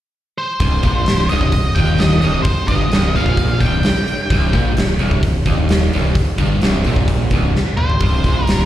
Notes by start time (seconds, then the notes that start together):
0.38 C5
0.60 C1 C2, kick, open hi-hat
0.83 A#1 A#2, kick, open hi-hat
1.06 C1 C2, snare, open hi-hat
1.29 C1 C2 D#5, open hi-hat
1.41 kick
1.52 C1 C2, kick, open hi-hat
1.75 D#1 D#2 G5, kick, open hi-hat
1.98 D#5, snare, open hi-hat
2.21 C1 C2 D#5, open hi-hat
2.42 C5, muted fingered electric bass stroke, kick, open hi-hat
2.47 muted overdriven electric guitar stroke
2.68 G1 G2 D#5, kick, open hi-hat
2.92 C1 C2, snare, open hi-hat
3.14 A#1 A#2 F5, open hi-hat
3.26 kick
3.37 kick, open hi-hat
3.61 C1 C2 G5, kick, open hi-hat
3.83 muted overdriven electric guitar stroke, muted fingered electric bass stroke, snare, open hi-hat
4.08 open hi-hat
4.30 C1 C2, kick, open hi-hat
4.53 A#1 A#2, kick, open hi-hat
4.77 C1 C2, snare, open hi-hat
4.99 C1 C2, open hi-hat
5.11 kick
5.23 C1 C2, kick, open hi-hat
5.46 D#1 D#2, kick, open hi-hat
5.69 snare, open hi-hat
5.93 C1 C2, open hi-hat
6.15 muted fingered electric bass stroke, muted overdriven electric guitar stroke, kick, open hi-hat
6.38 G1 G2, kick, open hi-hat
6.61 C1 C2, snare, open hi-hat
6.84 A#1 A#2, open hi-hat
6.96 kick
7.08 kick, open hi-hat
7.31 C1 C2, kick, open hi-hat
7.56 muted fingered electric bass stroke, muted overdriven electric guitar stroke, snare
7.77 C5, mid tom
7.90 floor tom
8.00 C1 C2, kick, open hi-hat
8.24 A#1 A#2, kick, open hi-hat
8.45 C1 C2 A#4, snare, open hi-hat